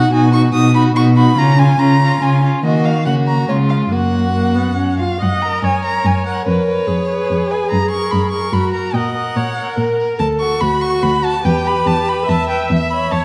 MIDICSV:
0, 0, Header, 1, 5, 480
1, 0, Start_track
1, 0, Tempo, 417246
1, 158, Time_signature, 3, 2, 24, 8
1, 3519, Tempo, 431344
1, 5919, Tempo, 415225
1, 15204, End_track
2, 0, Start_track
2, 0, Title_t, "Violin"
2, 0, Program_c, 0, 40
2, 0, Note_on_c, 0, 78, 73
2, 148, Note_off_c, 0, 78, 0
2, 155, Note_on_c, 0, 80, 76
2, 370, Note_off_c, 0, 80, 0
2, 377, Note_on_c, 0, 85, 89
2, 469, Note_off_c, 0, 85, 0
2, 610, Note_on_c, 0, 87, 85
2, 853, Note_off_c, 0, 87, 0
2, 866, Note_on_c, 0, 83, 77
2, 958, Note_off_c, 0, 83, 0
2, 1104, Note_on_c, 0, 85, 86
2, 1197, Note_off_c, 0, 85, 0
2, 1341, Note_on_c, 0, 83, 80
2, 1593, Note_on_c, 0, 82, 91
2, 1610, Note_off_c, 0, 83, 0
2, 1826, Note_on_c, 0, 80, 85
2, 1844, Note_off_c, 0, 82, 0
2, 2063, Note_on_c, 0, 82, 88
2, 2080, Note_off_c, 0, 80, 0
2, 2553, Note_on_c, 0, 80, 74
2, 2570, Note_off_c, 0, 82, 0
2, 2793, Note_off_c, 0, 80, 0
2, 3033, Note_on_c, 0, 75, 73
2, 3278, Note_on_c, 0, 77, 76
2, 3295, Note_off_c, 0, 75, 0
2, 3515, Note_off_c, 0, 77, 0
2, 3521, Note_on_c, 0, 78, 67
2, 3610, Note_off_c, 0, 78, 0
2, 3758, Note_on_c, 0, 82, 64
2, 3985, Note_off_c, 0, 82, 0
2, 3992, Note_on_c, 0, 73, 53
2, 4081, Note_off_c, 0, 73, 0
2, 4223, Note_on_c, 0, 77, 53
2, 4312, Note_off_c, 0, 77, 0
2, 4473, Note_on_c, 0, 78, 64
2, 5658, Note_off_c, 0, 78, 0
2, 5677, Note_on_c, 0, 77, 57
2, 5923, Note_on_c, 0, 78, 64
2, 5941, Note_off_c, 0, 77, 0
2, 6158, Note_on_c, 0, 82, 67
2, 6175, Note_off_c, 0, 78, 0
2, 6397, Note_off_c, 0, 82, 0
2, 6415, Note_on_c, 0, 80, 74
2, 6641, Note_off_c, 0, 80, 0
2, 6648, Note_on_c, 0, 82, 72
2, 6895, Note_on_c, 0, 80, 64
2, 6912, Note_off_c, 0, 82, 0
2, 7122, Note_off_c, 0, 80, 0
2, 7129, Note_on_c, 0, 78, 60
2, 7360, Note_off_c, 0, 78, 0
2, 7373, Note_on_c, 0, 73, 68
2, 8571, Note_on_c, 0, 80, 59
2, 8588, Note_off_c, 0, 73, 0
2, 8794, Note_off_c, 0, 80, 0
2, 8801, Note_on_c, 0, 82, 70
2, 9025, Note_off_c, 0, 82, 0
2, 9032, Note_on_c, 0, 85, 78
2, 9265, Note_on_c, 0, 83, 69
2, 9283, Note_off_c, 0, 85, 0
2, 9492, Note_off_c, 0, 83, 0
2, 9499, Note_on_c, 0, 85, 63
2, 9751, Note_on_c, 0, 83, 67
2, 9769, Note_off_c, 0, 85, 0
2, 9988, Note_off_c, 0, 83, 0
2, 9994, Note_on_c, 0, 82, 59
2, 10241, Note_on_c, 0, 78, 68
2, 10258, Note_off_c, 0, 82, 0
2, 11427, Note_off_c, 0, 78, 0
2, 11671, Note_on_c, 0, 81, 70
2, 11764, Note_off_c, 0, 81, 0
2, 11912, Note_on_c, 0, 85, 82
2, 12151, Note_on_c, 0, 83, 76
2, 12168, Note_off_c, 0, 85, 0
2, 12390, Note_on_c, 0, 85, 74
2, 12407, Note_off_c, 0, 83, 0
2, 12635, Note_on_c, 0, 83, 77
2, 12653, Note_off_c, 0, 85, 0
2, 12888, Note_on_c, 0, 81, 74
2, 12906, Note_off_c, 0, 83, 0
2, 13122, Note_on_c, 0, 79, 76
2, 13139, Note_off_c, 0, 81, 0
2, 13378, Note_on_c, 0, 83, 76
2, 13395, Note_off_c, 0, 79, 0
2, 13609, Note_on_c, 0, 81, 83
2, 13626, Note_off_c, 0, 83, 0
2, 13864, Note_on_c, 0, 83, 71
2, 13882, Note_off_c, 0, 81, 0
2, 14094, Note_on_c, 0, 81, 75
2, 14111, Note_off_c, 0, 83, 0
2, 14325, Note_off_c, 0, 81, 0
2, 14331, Note_on_c, 0, 79, 63
2, 14558, Note_off_c, 0, 79, 0
2, 14576, Note_on_c, 0, 76, 75
2, 14807, Note_on_c, 0, 83, 75
2, 14824, Note_off_c, 0, 76, 0
2, 15051, Note_on_c, 0, 81, 62
2, 15069, Note_off_c, 0, 83, 0
2, 15204, Note_off_c, 0, 81, 0
2, 15204, End_track
3, 0, Start_track
3, 0, Title_t, "Violin"
3, 0, Program_c, 1, 40
3, 0, Note_on_c, 1, 66, 55
3, 140, Note_off_c, 1, 66, 0
3, 147, Note_on_c, 1, 66, 56
3, 386, Note_off_c, 1, 66, 0
3, 397, Note_on_c, 1, 66, 50
3, 618, Note_off_c, 1, 66, 0
3, 624, Note_on_c, 1, 66, 51
3, 861, Note_off_c, 1, 66, 0
3, 871, Note_on_c, 1, 66, 55
3, 1094, Note_off_c, 1, 66, 0
3, 1101, Note_on_c, 1, 66, 50
3, 1332, Note_off_c, 1, 66, 0
3, 1339, Note_on_c, 1, 66, 51
3, 1564, Note_off_c, 1, 66, 0
3, 1571, Note_on_c, 1, 65, 50
3, 1815, Note_off_c, 1, 65, 0
3, 1821, Note_on_c, 1, 65, 49
3, 2056, Note_off_c, 1, 65, 0
3, 2062, Note_on_c, 1, 65, 56
3, 2301, Note_off_c, 1, 65, 0
3, 2326, Note_on_c, 1, 65, 53
3, 2546, Note_off_c, 1, 65, 0
3, 2553, Note_on_c, 1, 65, 53
3, 2788, Note_off_c, 1, 65, 0
3, 2799, Note_on_c, 1, 65, 46
3, 3032, Note_off_c, 1, 65, 0
3, 3042, Note_on_c, 1, 66, 46
3, 3490, Note_off_c, 1, 66, 0
3, 3527, Note_on_c, 1, 66, 50
3, 3998, Note_on_c, 1, 65, 48
3, 4014, Note_off_c, 1, 66, 0
3, 4474, Note_on_c, 1, 66, 44
3, 4491, Note_off_c, 1, 65, 0
3, 5694, Note_off_c, 1, 66, 0
3, 6168, Note_on_c, 1, 70, 45
3, 6632, Note_off_c, 1, 70, 0
3, 6649, Note_on_c, 1, 70, 46
3, 7115, Note_off_c, 1, 70, 0
3, 7131, Note_on_c, 1, 70, 42
3, 7361, Note_off_c, 1, 70, 0
3, 7373, Note_on_c, 1, 71, 39
3, 7602, Note_off_c, 1, 71, 0
3, 7608, Note_on_c, 1, 71, 39
3, 8073, Note_off_c, 1, 71, 0
3, 8087, Note_on_c, 1, 71, 44
3, 8551, Note_off_c, 1, 71, 0
3, 8572, Note_on_c, 1, 71, 39
3, 8800, Note_off_c, 1, 71, 0
3, 9042, Note_on_c, 1, 70, 36
3, 9505, Note_off_c, 1, 70, 0
3, 9513, Note_on_c, 1, 70, 44
3, 9979, Note_off_c, 1, 70, 0
3, 9994, Note_on_c, 1, 70, 39
3, 10224, Note_off_c, 1, 70, 0
3, 10255, Note_on_c, 1, 70, 39
3, 10474, Note_off_c, 1, 70, 0
3, 10478, Note_on_c, 1, 70, 37
3, 10939, Note_off_c, 1, 70, 0
3, 10960, Note_on_c, 1, 70, 44
3, 11420, Note_off_c, 1, 70, 0
3, 11428, Note_on_c, 1, 70, 42
3, 11659, Note_off_c, 1, 70, 0
3, 11905, Note_on_c, 1, 66, 43
3, 12376, Note_off_c, 1, 66, 0
3, 12389, Note_on_c, 1, 66, 54
3, 12854, Note_off_c, 1, 66, 0
3, 12861, Note_on_c, 1, 66, 45
3, 13100, Note_off_c, 1, 66, 0
3, 13112, Note_on_c, 1, 71, 49
3, 13346, Note_off_c, 1, 71, 0
3, 13352, Note_on_c, 1, 71, 43
3, 13823, Note_off_c, 1, 71, 0
3, 13840, Note_on_c, 1, 71, 52
3, 14310, Note_off_c, 1, 71, 0
3, 14325, Note_on_c, 1, 71, 42
3, 14556, Note_off_c, 1, 71, 0
3, 14813, Note_on_c, 1, 73, 41
3, 15204, Note_off_c, 1, 73, 0
3, 15204, End_track
4, 0, Start_track
4, 0, Title_t, "Viola"
4, 0, Program_c, 2, 41
4, 0, Note_on_c, 2, 63, 50
4, 145, Note_off_c, 2, 63, 0
4, 152, Note_on_c, 2, 63, 60
4, 388, Note_off_c, 2, 63, 0
4, 394, Note_on_c, 2, 63, 50
4, 623, Note_off_c, 2, 63, 0
4, 629, Note_on_c, 2, 63, 57
4, 851, Note_off_c, 2, 63, 0
4, 858, Note_on_c, 2, 63, 53
4, 1094, Note_off_c, 2, 63, 0
4, 1101, Note_on_c, 2, 63, 53
4, 1339, Note_off_c, 2, 63, 0
4, 1356, Note_on_c, 2, 63, 53
4, 1578, Note_off_c, 2, 63, 0
4, 1585, Note_on_c, 2, 61, 59
4, 1822, Note_off_c, 2, 61, 0
4, 1830, Note_on_c, 2, 61, 50
4, 2065, Note_off_c, 2, 61, 0
4, 2079, Note_on_c, 2, 61, 53
4, 2310, Note_off_c, 2, 61, 0
4, 2324, Note_on_c, 2, 61, 54
4, 2553, Note_off_c, 2, 61, 0
4, 2572, Note_on_c, 2, 61, 51
4, 2788, Note_off_c, 2, 61, 0
4, 2795, Note_on_c, 2, 61, 47
4, 3030, Note_off_c, 2, 61, 0
4, 3051, Note_on_c, 2, 58, 55
4, 3495, Note_off_c, 2, 58, 0
4, 3517, Note_on_c, 2, 58, 45
4, 3987, Note_on_c, 2, 56, 48
4, 4003, Note_off_c, 2, 58, 0
4, 4464, Note_on_c, 2, 58, 42
4, 4481, Note_off_c, 2, 56, 0
4, 4906, Note_off_c, 2, 58, 0
4, 4936, Note_on_c, 2, 58, 51
4, 5182, Note_on_c, 2, 59, 46
4, 5199, Note_off_c, 2, 58, 0
4, 5424, Note_off_c, 2, 59, 0
4, 5430, Note_on_c, 2, 61, 43
4, 5669, Note_on_c, 2, 65, 47
4, 5686, Note_off_c, 2, 61, 0
4, 5903, Note_off_c, 2, 65, 0
4, 5909, Note_on_c, 2, 75, 67
4, 6404, Note_on_c, 2, 73, 52
4, 6421, Note_off_c, 2, 75, 0
4, 7343, Note_off_c, 2, 73, 0
4, 7350, Note_on_c, 2, 70, 58
4, 7829, Note_on_c, 2, 68, 52
4, 7847, Note_off_c, 2, 70, 0
4, 9743, Note_off_c, 2, 68, 0
4, 9748, Note_on_c, 2, 66, 49
4, 10229, Note_on_c, 2, 75, 55
4, 10246, Note_off_c, 2, 66, 0
4, 10709, Note_on_c, 2, 73, 47
4, 10727, Note_off_c, 2, 75, 0
4, 11184, Note_off_c, 2, 73, 0
4, 11204, Note_on_c, 2, 70, 54
4, 11662, Note_off_c, 2, 70, 0
4, 11674, Note_on_c, 2, 69, 61
4, 12163, Note_on_c, 2, 66, 57
4, 12181, Note_off_c, 2, 69, 0
4, 13101, Note_off_c, 2, 66, 0
4, 13108, Note_on_c, 2, 67, 63
4, 14054, Note_off_c, 2, 67, 0
4, 14070, Note_on_c, 2, 76, 65
4, 15053, Note_on_c, 2, 73, 58
4, 15070, Note_off_c, 2, 76, 0
4, 15204, Note_off_c, 2, 73, 0
4, 15204, End_track
5, 0, Start_track
5, 0, Title_t, "Cello"
5, 0, Program_c, 3, 42
5, 151, Note_on_c, 3, 47, 65
5, 574, Note_off_c, 3, 47, 0
5, 629, Note_on_c, 3, 47, 64
5, 1050, Note_off_c, 3, 47, 0
5, 1096, Note_on_c, 3, 47, 70
5, 1525, Note_off_c, 3, 47, 0
5, 1585, Note_on_c, 3, 49, 68
5, 2011, Note_off_c, 3, 49, 0
5, 2064, Note_on_c, 3, 49, 63
5, 2491, Note_off_c, 3, 49, 0
5, 2546, Note_on_c, 3, 49, 66
5, 2974, Note_off_c, 3, 49, 0
5, 3035, Note_on_c, 3, 51, 59
5, 3526, Note_on_c, 3, 49, 50
5, 3542, Note_off_c, 3, 51, 0
5, 3989, Note_off_c, 3, 49, 0
5, 3996, Note_on_c, 3, 49, 49
5, 4465, Note_off_c, 3, 49, 0
5, 4477, Note_on_c, 3, 42, 48
5, 5671, Note_off_c, 3, 42, 0
5, 5929, Note_on_c, 3, 42, 64
5, 6325, Note_off_c, 3, 42, 0
5, 6395, Note_on_c, 3, 42, 58
5, 6798, Note_off_c, 3, 42, 0
5, 6879, Note_on_c, 3, 42, 64
5, 7282, Note_off_c, 3, 42, 0
5, 7363, Note_on_c, 3, 41, 63
5, 7763, Note_off_c, 3, 41, 0
5, 7837, Note_on_c, 3, 41, 48
5, 8238, Note_off_c, 3, 41, 0
5, 8327, Note_on_c, 3, 41, 60
5, 8724, Note_off_c, 3, 41, 0
5, 8812, Note_on_c, 3, 42, 59
5, 9205, Note_off_c, 3, 42, 0
5, 9286, Note_on_c, 3, 42, 57
5, 9677, Note_off_c, 3, 42, 0
5, 9744, Note_on_c, 3, 42, 56
5, 10145, Note_off_c, 3, 42, 0
5, 10221, Note_on_c, 3, 46, 59
5, 10622, Note_off_c, 3, 46, 0
5, 10712, Note_on_c, 3, 46, 52
5, 11108, Note_off_c, 3, 46, 0
5, 11186, Note_on_c, 3, 46, 57
5, 11584, Note_off_c, 3, 46, 0
5, 11677, Note_on_c, 3, 38, 60
5, 12074, Note_off_c, 3, 38, 0
5, 12156, Note_on_c, 3, 38, 54
5, 12553, Note_off_c, 3, 38, 0
5, 12641, Note_on_c, 3, 38, 59
5, 13037, Note_off_c, 3, 38, 0
5, 13124, Note_on_c, 3, 40, 67
5, 13519, Note_off_c, 3, 40, 0
5, 13604, Note_on_c, 3, 40, 63
5, 14002, Note_off_c, 3, 40, 0
5, 14098, Note_on_c, 3, 40, 58
5, 14490, Note_off_c, 3, 40, 0
5, 14574, Note_on_c, 3, 40, 67
5, 14969, Note_off_c, 3, 40, 0
5, 15050, Note_on_c, 3, 40, 49
5, 15204, Note_off_c, 3, 40, 0
5, 15204, End_track
0, 0, End_of_file